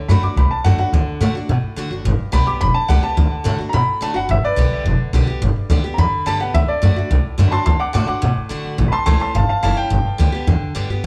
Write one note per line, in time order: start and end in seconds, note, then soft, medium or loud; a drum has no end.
0.09 0.22 F#2 medium
0.09 0.23 D3 medium
0.09 0.23 A3 medium
0.09 0.23 D4 loud
0.09 0.22 F#4 loud
0.09 0.22 B5 medium
0.23 0.37 D4 soft
0.23 0.36 F#4 medium
0.23 0.37 D6 medium
0.23 muted upright bass stroke medium
0.36 0.49 C2 loud
0.36 0.90 A2 medium
0.36 0.51 B5 medium
0.51 0.64 A5 medium
0.51 muted upright bass stroke medium
0.64 0.78 F#2 medium
0.64 0.78 D3 medium
0.64 0.79 A3 medium
0.64 0.79 D4 medium
0.64 0.77 F#4 medium
0.64 0.78 F#5 medium
0.78 0.93 D4 soft
0.78 0.92 F#4 medium
0.78 1.34 F#5 medium
0.78 muted upright bass stroke medium
0.93 1.06 D2 loud
0.93 1.19 D3 medium
1.06 muted upright bass stroke medium
1.21 1.34 A2 medium
1.21 1.34 D3 loud
1.21 1.35 A3 loud
1.21 1.35 D4 loud
1.21 1.34 F#4 loud
1.34 1.49 D4 medium
1.34 1.48 F#4 medium
1.34 muted upright bass stroke medium
1.49 2.02 A2 medium
1.49 1.62 B2 medium
1.63 muted upright bass stroke medium
1.76 1.90 D3 medium
1.76 1.91 A3 medium
1.76 1.91 D4 loud
1.76 1.89 F#4 loud
1.91 2.04 F#1 medium
1.91 2.05 D4 soft
1.91 2.04 F#4 medium
2.05 2.18 G1 medium
2.05 2.58 G2 medium
2.19 muted upright bass stroke medium
2.32 2.46 B1 medium
2.32 2.46 D3 loud
2.32 2.47 G3 medium
2.32 2.47 B3 loud
2.32 2.46 G4 loud
2.32 2.47 B5 loud
2.47 2.62 B3 soft
2.47 2.61 G4 medium
2.47 2.61 D6 medium
2.47 muted upright bass stroke medium
2.61 2.74 E1 loud
2.61 2.87 D3 medium
2.61 2.75 B5 loud
2.74 2.88 A5 loud
2.74 muted upright bass stroke medium
2.88 3.02 C#2 medium
2.88 3.02 D3 medium
2.88 3.03 G3 medium
2.88 3.03 B3 loud
2.88 3.01 G4 loud
2.88 3.03 F#5 loud
3.03 3.17 B3 soft
3.03 3.16 G4 medium
3.03 3.58 A5 loud
3.17 3.30 D2 loud
3.17 3.43 D3 medium
3.32 muted upright bass stroke medium
3.44 3.58 A2 medium
3.44 3.58 D3 medium
3.44 3.59 A3 loud
3.44 3.59 D4 loud
3.44 3.57 F#4 loud
3.58 3.74 D4 soft
3.58 3.72 F#4 medium
3.58 muted upright bass stroke medium
3.69 4.27 A2 medium
3.69 3.71 A#5 medium
3.74 3.87 B2 loud
3.74 4.01 B5 loud
3.88 muted upright bass stroke medium
4.01 4.15 D3 medium
4.01 4.14 D3 medium
4.01 4.15 A3 medium
4.01 4.15 D4 loud
4.01 4.13 F#4 loud
4.01 4.16 A5 medium
4.14 4.28 F#1 medium
4.14 4.29 D4 soft
4.14 4.28 F#4 medium
4.14 4.29 F#5 loud
4.29 4.42 G1 loud
4.29 4.82 G2 medium
4.29 4.44 E5 loud
4.43 4.96 B4 medium
4.43 4.99 D5 loud
4.43 muted upright bass stroke medium
4.56 4.70 B1 medium
4.56 4.84 D3 medium
4.56 4.84 G3 medium
4.56 4.85 B3 loud
4.56 4.85 G4 medium
4.71 muted upright bass stroke medium
4.85 4.98 E1 loud
4.85 5.12 D3 medium
4.99 muted upright bass stroke medium
5.13 5.26 B1 medium
5.13 5.27 D3 medium
5.13 5.27 G3 medium
5.13 5.28 B3 medium
5.13 5.26 G4 medium
5.27 5.42 B3 soft
5.27 5.41 G4 medium
5.27 muted upright bass stroke medium
5.41 5.54 G1 loud
5.41 5.95 G2 medium
5.56 muted upright bass stroke medium
5.70 5.83 D2 loud
5.70 5.83 D3 medium
5.70 5.84 G3 medium
5.70 5.84 B3 loud
5.70 5.83 G4 loud
5.84 5.98 B3 medium
5.84 5.97 G4 medium
5.94 5.96 A#5 medium
5.98 6.11 E2 loud
5.98 6.25 D3 medium
5.98 6.25 B5 loud
6.12 muted upright bass stroke medium
6.26 6.39 G2 medium
6.26 6.39 D3 loud
6.26 6.40 G3 medium
6.26 6.40 B3 medium
6.26 6.39 G4 loud
6.26 6.40 A5 loud
6.40 6.53 C2 medium
6.40 6.55 B3 soft
6.40 6.54 G4 medium
6.40 6.54 F#5 medium
6.54 6.67 D2 loud
6.54 6.81 D3 medium
6.54 6.68 E5 loud
6.68 7.23 D5 loud
6.82 6.95 F#2 medium
6.82 6.95 D3 loud
6.82 6.96 A3 medium
6.82 6.96 D4 loud
6.82 6.95 F#4 loud
6.96 7.11 D4 soft
6.96 7.10 F#4 medium
6.96 muted upright bass stroke medium
7.11 7.23 C2 loud
7.11 7.64 A2 medium
7.24 muted upright bass stroke medium
7.38 7.51 F#2 medium
7.38 7.51 D3 medium
7.38 7.52 A3 medium
7.38 7.52 D4 loud
7.38 7.51 F#4 medium
7.48 7.64 A5 medium
7.48 7.50 B5 medium
7.52 7.67 D4 medium
7.52 7.66 F#4 medium
7.52 7.65 C6 loud
7.52 muted upright bass stroke medium
7.65 7.79 D2 loud
7.65 7.92 D3 medium
7.65 7.79 A5 medium
7.65 7.80 C6 medium
7.80 7.92 F#5 medium
7.80 7.93 D6 loud
7.80 muted upright bass stroke medium
7.93 8.08 A2 medium
7.93 8.07 D3 medium
7.93 8.08 A3 medium
7.93 8.08 D4 loud
7.93 8.06 F#4 loud
7.93 8.06 F#5 medium
7.93 8.07 D6 medium
8.07 8.22 D4 soft
8.07 8.22 F#4 medium
8.07 8.34 F#5 medium
8.07 8.36 D6 medium
8.07 muted upright bass stroke medium
8.22 8.76 A2 loud
8.22 8.36 B2 medium
8.37 muted upright bass stroke medium
8.49 8.77 D3 medium
8.49 8.64 D3 loud
8.49 8.77 A3 medium
8.49 8.77 D4 loud
8.49 8.78 F#4 medium
8.65 8.78 D3 medium
8.78 8.91 A1 loud
8.78 9.32 A2 medium
8.88 9.04 A5 loud
8.88 8.90 B5 medium
8.93 9.05 C6 loud
8.93 muted upright bass stroke medium
9.06 9.20 C#2 medium
9.06 9.20 E3 loud
9.06 9.20 A3 loud
9.06 9.21 C#4 medium
9.06 9.19 E4 loud
9.06 9.19 A5 medium
9.06 9.20 C6 loud
9.20 9.35 C#4 medium
9.20 9.34 E4 medium
9.20 9.34 A5 medium
9.20 9.35 C6 medium
9.20 muted upright bass stroke medium
9.35 9.48 G1 loud
9.35 9.88 E2 medium
9.35 9.48 F5 medium
9.35 9.48 A5 medium
9.49 9.61 F5 medium
9.49 9.62 A5 medium
9.49 muted upright bass stroke medium
9.63 9.76 F#1 loud
9.63 9.76 E3 medium
9.63 9.77 A3 medium
9.63 9.77 C#4 medium
9.63 9.75 E4 loud
9.63 9.76 F5 medium
9.63 9.77 A5 loud
9.77 9.91 C#4 soft
9.77 9.90 E4 medium
9.77 10.59 G5 loud
9.77 muted upright bass stroke medium
9.90 10.04 G1 loud
9.90 10.44 G2 medium
10.05 muted upright bass stroke medium
10.18 10.32 D2 medium
10.18 10.32 D3 loud
10.18 10.33 G3 loud
10.18 10.33 B3 loud
10.18 10.31 G4 loud
10.32 10.48 B3 medium
10.32 10.46 G4 medium
10.47 10.60 E2 loud
10.47 10.73 D3 medium
10.61 muted upright bass stroke medium
10.75 10.88 G2 medium
10.75 10.89 D3 medium
10.75 10.89 G3 medium
10.75 10.89 B3 medium
10.75 10.89 G4 medium
10.89 11.03 G2 medium
10.89 11.04 B3 soft
10.89 11.04 G4 medium